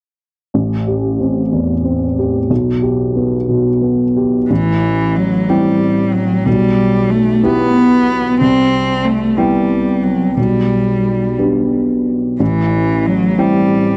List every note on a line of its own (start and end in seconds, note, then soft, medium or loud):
0.54 2.46 A1 soft
0.87 1.40 G4 soft
1.20 1.72 C4 soft
1.52 2.04 E2 soft
1.85 2.37 C4 soft
2.19 2.51 G4 soft
2.50 4.46 B1 soft
2.82 3.35 G4 soft
3.16 3.69 B3 soft
3.48 4.02 B2 soft
3.82 4.36 B3 soft
4.16 4.50 G4 soft
4.50 5.45 A1 soft
4.50 5.17 E3 medium
5.16 5.50 F#3 medium
5.48 6.14 G3 medium
5.48 6.42 C4 soft
5.48 6.43 E4 soft
5.48 6.43 G5 soft
6.13 6.47 F#3 medium
6.46 7.41 B1 soft
6.46 7.12 G3 medium
7.10 7.46 A3 medium
7.43 8.37 B3 soft
7.43 8.40 B3 medium
7.43 8.37 E4 soft
7.43 8.37 G4 soft
8.41 9.35 C2 medium
8.41 9.06 C4 medium
9.04 9.38 A3 medium
9.37 10.05 G3 medium
9.37 10.33 B3 soft
9.37 10.33 E4 soft
9.37 10.34 G5 soft
10.03 10.37 F#3 soft
10.37 11.35 B1 soft
10.37 11.37 G3 medium
11.38 12.36 B3 soft
11.38 12.36 D4 soft
11.38 12.36 G4 soft
12.40 13.36 A1 soft
12.40 13.08 E3 medium
13.06 13.40 F#3 medium
13.38 13.97 G3 medium
13.38 13.97 C4 soft
13.38 13.97 E4 soft
13.38 13.97 G5 soft